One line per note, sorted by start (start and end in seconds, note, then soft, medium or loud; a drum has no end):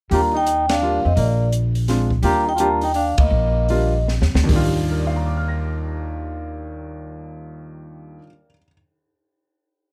0.11 1.00 D#2 medium
0.11 0.32 G3 medium
0.11 0.32 A#3 medium
0.11 0.33 D4 medium
0.11 0.33 F4 medium
0.11 0.21 G4 medium
0.11 0.23 A#5 medium
0.11 kick soft
0.11 open hi-hat soft
0.34 0.67 D#4 medium
0.34 0.72 G5 loud
0.46 closed hi-hat soft
0.68 1.02 D4 medium
0.68 1.06 F5 medium
0.68 snare medium
0.68 ride medium
0.82 1.03 G3 medium
0.82 1.03 A#3 medium
0.82 1.03 D4 medium
0.82 1.03 F4 medium
1.04 1.16 F2 medium
1.04 1.16 C4 medium
1.04 1.18 D#5 medium
1.17 2.19 A#1 medium
1.17 1.50 A#3 medium
1.17 1.51 D5 medium
1.17 kick soft
1.17 open hi-hat soft
1.52 closed hi-hat soft
1.75 open hi-hat soft
1.88 2.09 G#3 soft
1.88 2.09 C4 soft
1.88 2.09 D4 soft
1.88 2.09 F4 medium
1.88 snare soft
1.88 open hi-hat soft
2.11 kick medium
2.23 3.14 D#2 medium
2.23 2.44 G3 medium
2.23 2.44 A#3 medium
2.23 2.44 D4 medium
2.23 2.44 F4 medium
2.23 2.45 G4 medium
2.23 2.45 A#5 medium
2.23 kick soft
2.23 open hi-hat soft
2.47 2.55 D#4 medium
2.47 2.56 G5 medium
2.56 2.59 F4 medium
2.56 2.70 G4 medium
2.56 2.59 A5 medium
2.56 closed hi-hat soft
2.60 2.80 G3 medium
2.60 2.80 A#3 medium
2.60 2.80 D4 medium
2.60 2.80 F4 medium
2.60 2.70 A#5 loud
2.81 2.94 D#4 medium
2.81 2.95 G5 medium
2.81 open hi-hat soft
2.94 3.17 D4 medium
2.94 3.20 F5 medium
2.94 open hi-hat soft
3.18 3.30 D2 medium
3.18 4.04 A#3 medium
3.18 4.05 D#5 medium
3.18 kick medium
3.18 ride medium
3.30 4.17 A#1 medium
3.69 3.92 G3 medium
3.69 3.92 A#3 medium
3.69 3.92 D4 medium
3.69 3.92 F4 medium
3.69 open hi-hat soft
4.08 snare soft
4.21 4.34 D#2 medium
4.21 snare medium
4.34 4.48 D2 medium
4.34 snare medium
4.44 8.17 D#2 medium
4.44 8.20 D#3 medium
4.49 8.18 D#2 medium
4.49 8.23 G3 medium
4.49 kick loud
4.49 floor tom medium
4.49 open hi-hat medium
4.53 8.27 D4 medium
4.53 8.29 F4 medium
4.91 8.45 A#4 soft
4.99 8.49 D5 soft
5.07 8.53 F5 soft
5.16 8.57 A#5 soft
5.26 8.62 D6 soft
5.37 8.68 F6 soft
5.48 8.73 A#6 soft